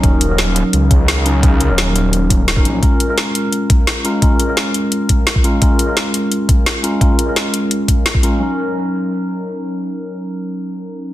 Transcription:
<<
  \new Staff \with { instrumentName = "Tine electric piano" } { \time 4/4 \key ees \minor \tempo 4 = 172 <ges des' ees' bes'>8. <ges des' ees' bes'>2~ <ges des' ees' bes'>8. <ges des' ees' bes'>8 | <ges des' ees' bes'>8. <ges des' ees' bes'>2~ <ges des' ees' bes'>8 <ges des' ees' bes'>8. | <aes des' f' bes'>8. <aes des' f' bes'>2~ <aes des' f' bes'>8. <aes des' f' bes'>8 | <aes des' f' bes'>8. <aes des' f' bes'>2~ <aes des' f' bes'>8. <aes des' f' bes'>8 |
<aes des' f' bes'>8. <aes des' f' bes'>2~ <aes des' f' bes'>8. <aes des' f' bes'>8 | <aes des' f' bes'>8. <aes des' f' bes'>2~ <aes des' f' bes'>8. <aes des' f' bes'>8 | <ges des' ees' bes'>1~ | <ges des' ees' bes'>1 | }
  \new Staff \with { instrumentName = "Detuned saw bass" } { \clef bass \time 4/4 \key ees \minor ees,,4.~ ees,,16 r16 des,2~ | des,8. ees,,2~ ees,,8. bes,,8 | r1 | r1 |
r1 | r1 | r1 | r1 | }
  \new DrumStaff \with { instrumentName = "Drums" } \drummode { \time 4/4 <hh bd>8 hh8 <hh sn>8 hh8 hh8 <hh bd>8 <hh sn>8 hh8 | <hh bd>8 hh8 <hh sn>8 hh8 hh8 <hh bd>8 <hh sn>16 bd16 hh8 | <hh bd>8 hh8 <hh sn>8 hh8 hh8 <hh bd>8 <hh sn>8 hh8 | <hh bd>8 hh8 <hh sn>8 hh8 hh8 <hh bd>8 <hh sn>16 bd16 hh8 |
<hh bd>8 hh8 <hh sn>8 hh8 hh8 <hh bd>8 <hh sn>8 hh8 | <hh bd>8 hh8 <hh sn>8 hh8 hh8 <hh bd>8 <hh sn>16 bd16 hh8 | r4 r4 r4 r4 | r4 r4 r4 r4 | }
>>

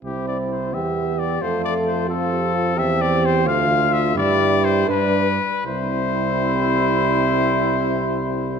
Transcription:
<<
  \new Staff \with { instrumentName = "Trumpet" } { \time 6/8 \key c \major \tempo 4. = 84 g'8 d''8 c''8 e''4 d''8 | c''8 d''8 c''8 a'4. | e''8 d''8 c''8 f''4 e''8 | d''4 c''8 b'4. |
c''2.~ | c''2. | }
  \new Staff \with { instrumentName = "French horn" } { \time 6/8 \key c \major r4. g'4. | a'4. f'8 g'8 f'8 | g'4. f'4. | g'4. b'8. r8. |
c'2.~ | c'2. | }
  \new Staff \with { instrumentName = "Flugelhorn" } { \time 6/8 \key c \major e'4. g'4. | f'4. f'4. | g'4. f'4. | e'4. d'4 r8 |
e'2.~ | e'2. | }
  \new Staff \with { instrumentName = "Trombone" } { \time 6/8 \key c \major c'4. b4. | a4. c'4. | c'4. a4. | g4. d'4 r8 |
g2.~ | g2. | }
  \new Staff \with { instrumentName = "Tuba" } { \clef bass \time 6/8 \key c \major c,4. e,4. | f,2. | e,4. d,4. | g,4. g,4 r8 |
c,2.~ | c,2. | }
>>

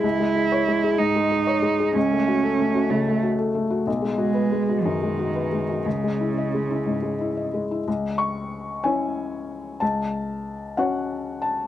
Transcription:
<<
  \new Staff \with { instrumentName = "Felt piano" } { \time 6/8 \key cis \minor \tempo 4. = 62 << { r2. | r2. | r2. | r2. |
r8 cis'''4 gis''4. | a''4. fis''4 a''8 | } \\ { cis,16 gis16 gis'16 cis''16 gis16 gis'16 gis,16 gis16 gis'16 cis''16 gis16 gis'16 | cis,16 a16 fis'16 a'16 a16 fis'16 cis16 a16 fis'16 a'16 a16 fis'16 | b,,16 gis16 fis'16 b'16 gis16 fis'16 fis,16 gis16 fis'16 b'16 gis16 fis'16 | cis,16 gis16 e'16 dis''16 gis16 e'16 gis,16 gis16 e'16 dis''16 gis16 e'16 |
cis,4. <cis' e' cis''>4. | cis,4. <cis' fis' cis''>4. | } >> }
  \new Staff \with { instrumentName = "Cello" } { \time 6/8 \key cis \minor e'4. dis'4. | cis'4. a8 r4 | r8 gis4 dis4. | cis2~ cis8 r8 |
r2. | r2. | }
>>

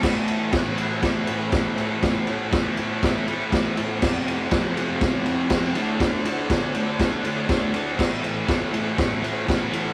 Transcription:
<<
  \new Staff \with { instrumentName = "Distorted electric guitar" } { \clef bass \time 4/4 \key d \major \tempo 4 = 121 <a, e a>8 <a, e a>8 <a, e a>8 <a, e a>8 <a, e a>8 <a, e a>8 <a, e a>8 <a, e a>8 | <a, e a>8 <a, e a>8 <a, e a>8 <a, e a>8 <a, e a>8 <a, e a>8 <a, e a>8 <a, e a>8 | <f, c f>8 <f, c f>8 <f, c f>8 <f, c f>8 <f, c f>8 <f, c f>8 <f, c f>8 <d a d'>8 | <d a d'>8 <d a d'>8 <d a d'>8 <d a d'>8 <d a d'>8 <d a d'>8 <d a d'>8 <d a d'>8 |
<a, e a>8 <a, e a>8 <a, e a>8 <a, e a>8 <a, e a>8 <a, e a>8 <a, e a>8 <a, e a>8 | }
  \new DrumStaff \with { instrumentName = "Drums" } \drummode { \time 4/4 <cymc bd sn>8 cymr8 <bd cymr sn>8 cymr8 <bd cymr sn>8 cymr8 <bd cymr sn>8 cymr8 | <bd cymr sn>8 cymr8 <bd cymr sn>8 cymr8 <bd cymr sn>8 cymr8 <bd cymr sn>8 cymr8 | <cymc bd sn>8 cymr8 <bd cymr sn>8 cymr8 <bd cymr sn>8 cymr8 <bd cymr sn>8 cymr8 | <bd cymr sn>8 cymr8 <bd cymr sn>8 cymr8 <bd cymr sn>8 cymr8 <bd cymr sn>8 cymr8 |
<cymc bd sn>8 cymr8 <bd cymr sn>8 cymr8 <bd cymr sn>8 cymr8 <bd cymr sn>8 cymr8 | }
>>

